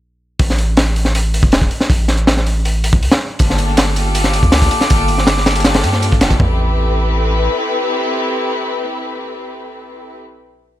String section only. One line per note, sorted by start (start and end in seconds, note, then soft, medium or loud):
3.40 3.94 A#3 medium
3.40 3.94 D4 medium
3.40 3.94 F4 medium
3.40 3.94 G4 medium
3.40 3.94 A4 medium
3.96 4.50 A#3 medium
3.96 4.50 D4 medium
3.96 4.50 F4 medium
3.96 4.50 G4 medium
3.96 4.50 A4 medium
4.52 4.88 A#3 medium
4.52 4.88 D4 medium
4.52 4.88 F4 medium
4.52 4.88 G4 medium
4.52 4.88 A4 medium
4.90 4.99 A#3 loud
4.90 4.99 D4 medium
4.90 4.99 F4 medium
4.90 4.99 G4 medium
4.90 4.99 A4 loud
5.47 6.20 A#3 medium
5.47 6.20 D4 medium
5.47 6.20 F4 medium
5.47 6.20 G4 medium
5.47 6.20 A4 loud
6.22 6.38 A#3 medium
6.22 6.38 D4 medium
6.22 6.38 F4 medium
6.22 6.38 G4 medium
6.22 6.38 A4 loud
6.40 10.16 C4 loud
6.40 10.16 E4 medium
6.40 10.16 G4 medium
6.40 10.16 A4 medium
6.40 10.16 B4 loud